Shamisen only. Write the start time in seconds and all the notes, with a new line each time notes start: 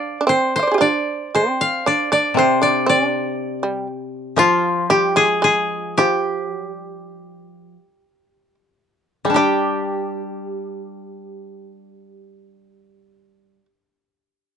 Already playing: D4
0.21 D4
0.27 C4
0.59 D5 F5
0.67 C5
0.71 G4 G#4
0.78 D4 F4
1.35 C4
1.86 D4
2.12 D4
2.37 C4
2.62 D4
2.86 C4
3.08 D4
3.63 G3
4.38 F3
4.90 G3
5.16 G#3
5.42 G#3
5.99 F3
6.45 F#3
6.74 G3
9.25 G#3
9.36 G3